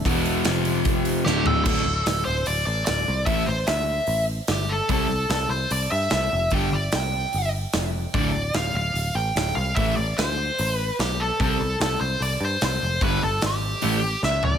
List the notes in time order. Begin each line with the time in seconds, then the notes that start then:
0.03 E1 E2 B2 E3 B3 E4, kick, open hi-hat
0.26 open hi-hat
0.45 F1 F2 C3 F3 C4 G4, snare, open hi-hat
0.65 open hi-hat
0.85 kick, open hi-hat
1.05 open hi-hat
1.25 D1 D2 A2 D3 D4 G4 A4 E5, snare
1.46 A4, floor tom
1.65 D1 D2 A2 D3 A4, kick, crash
1.85 D1
2.06 D1 A4, snare, open hi-hat
2.25 D1 C5
2.46 D1 D5, open hi-hat
2.66 A1 D5
2.85 D1 D5, snare, open hi-hat
3.08 C2
3.26 A1 A2 E3 A3 E5, kick, open hi-hat
3.46 A1 C5
3.67 D2 E5, snare, open hi-hat
4.07 A1, open hi-hat
4.47 G1, snare, open hi-hat
4.51 G4
4.69 A4
4.89 C2 C3 G3 C4 A4, kick, open hi-hat
5.08 C2
5.29 C2 A4, snare, open hi-hat
5.49 C2 C5
5.71 C2 D5, open hi-hat
5.91 G2 E5
6.10 C2 E5, snare, open hi-hat
6.33 F1
6.50 G1 G2 D3 G3, kick, open hi-hat
6.54 G5
6.72 G1 D5
6.92 C2 G5, snare, open hi-hat
7.33 G1, open hi-hat
7.73 F1, snare, open hi-hat
8.14 D1 D2 A2 D3 D5, kick, open hi-hat
8.34 D1
8.54 D1 F5, snare, open hi-hat
8.74 D1 F5
8.94 D1, open hi-hat
9.15 A1 G5
9.36 D1, snare, open hi-hat
9.55 C2 F5
9.76 A1 A2 E3 A3 E5, kick, open hi-hat
9.96 A1 D5
10.18 D2 C5, snare, open hi-hat
10.58 A1, open hi-hat
10.75 B4
10.99 B1 G4, snare, open hi-hat
11.20 A4
11.40 C2 C3 G3 C4 A4, kick, open hi-hat
11.60 C2
11.80 C2 A4, snare, open hi-hat
12.01 C2 C5
12.20 C2 D5, open hi-hat
12.41 G2
12.45 C5
12.61 C2 C5, snare, open hi-hat
12.83 F1
13.01 G1 G2 D3 G3 B4, kick, open hi-hat
13.23 G1 A4
13.42 G#1, snare, open hi-hat
13.46 G4
13.82 A1 A2 E3 A3, open hi-hat
14.23 C#2 E5, snare
14.43 D5, floor tom